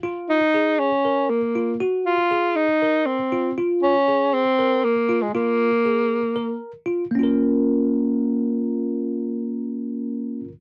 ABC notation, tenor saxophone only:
X:1
M:7/8
L:1/16
Q:1/4=119
K:Bbm
V:1 name="Tenor saxophone"
z2 E4 D4 B,4 | z2 F4 E4 C4 | z2 D4 C4 B,3 A, | B,8- B,2 z4 |
z12 z2 | z12 z2 |]